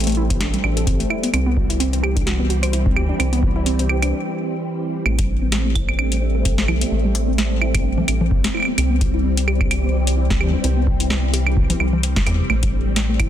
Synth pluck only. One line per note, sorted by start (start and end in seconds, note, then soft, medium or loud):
0.07 0.15 A3 loud
0.17 0.23 E4 loud
0.30 0.35 B3 medium
0.40 0.51 D4 medium
0.53 0.58 G3 medium
0.64 0.74 D4 medium
0.77 0.86 A4 medium
0.87 0.97 C4 medium
1.00 1.08 A3 loud
1.10 1.16 E4 loud
1.23 1.28 B3 medium
1.33 1.46 C4 loud
1.46 1.56 B3 loud
1.57 1.67 F#4 medium
1.70 1.78 E4 loud
1.80 1.92 C4 loud
1.93 2.01 C4 loud
2.03 2.09 G4 loud
2.16 2.21 D4 medium
2.26 2.37 F#4 medium
2.39 2.44 B3 medium
2.50 2.60 F#4 medium
2.63 2.72 C5 medium
2.73 2.83 E4 medium
2.86 2.94 C4 loud
2.96 3.02 G4 loud
3.09 3.14 D4 medium
3.19 3.32 C4 loud
3.33 3.42 B3 loud
3.43 3.53 F#4 medium
3.56 3.64 E4 loud
3.66 3.78 C4 loud
3.79 3.87 C4 loud
3.89 3.95 G4 loud
4.02 4.07 D4 medium
5.06 5.18 A3 loud
5.19 5.28 G3 loud
5.29 5.39 D4 medium
5.42 5.50 C4 loud
5.52 5.64 A3 loud
5.65 5.73 A3 loud
5.75 5.81 E4 loud
5.88 5.93 B3 medium
5.99 6.09 D4 medium
6.12 6.16 G3 medium
6.22 6.32 D4 medium
6.35 6.45 A4 medium
6.45 6.55 C4 medium
6.58 6.66 A3 loud
6.68 6.75 E4 loud
6.81 6.86 B3 medium
6.92 7.04 A3 loud
7.05 7.14 G3 loud
7.15 7.25 D4 medium
7.28 7.36 C4 loud
7.38 7.50 A3 loud
7.51 7.59 A3 loud
7.61 7.68 E4 loud
7.74 7.79 B3 medium
7.85 7.95 D4 medium
7.98 8.03 G3 medium
8.08 8.18 D4 medium
8.21 8.31 A4 medium
8.31 8.41 C4 medium
8.44 8.52 A3 loud
8.54 8.61 E4 loud
8.68 8.72 B3 medium
8.78 8.90 C4 loud
8.91 9.00 B3 loud
9.01 9.11 F#4 medium
9.14 9.22 E4 loud
9.24 9.36 C4 loud
9.37 9.45 C4 loud
9.47 9.54 G4 loud
9.61 9.65 D4 medium
9.71 9.81 F#4 medium
9.84 9.89 B3 medium
9.94 10.04 F#4 medium
10.07 10.17 C5 medium
10.17 10.27 E4 medium
10.30 10.38 C4 loud
10.40 10.47 G4 loud
10.54 10.58 D4 medium
10.64 10.76 C4 loud
10.77 10.86 B3 loud
10.87 10.97 F#4 medium
11.00 11.08 E4 loud
11.10 11.22 C4 loud
11.23 11.31 C4 loud
11.33 11.40 G4 loud
11.47 11.51 D4 medium
11.57 11.67 F#4 medium
11.70 11.75 B3 medium
11.93 12.03 G3 medium
12.03 12.14 C5 medium
12.16 12.24 G3 medium
12.27 12.33 B3 medium
12.40 12.44 C3 medium
12.50 12.62 A3 loud
12.63 12.73 G3 loud
12.73 12.83 D4 medium
12.86 12.94 G3 medium
12.96 13.08 A3 loud
13.09 13.17 A3 loud
13.20 13.26 E4 loud